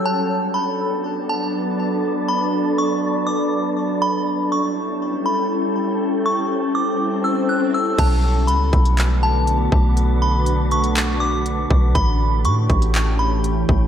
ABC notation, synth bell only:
X:1
M:4/4
L:1/8
Q:1/4=121
K:Bm
V:1 name="Synth bell"
a2 b3 a z2 | z b2 c'2 d'3 | b2 c'3 b z2 | z c'2 d'2 e' f' e' |
a2 b3 a z2 | z b2 c'2 d'3 | b2 c'3 b z2 |]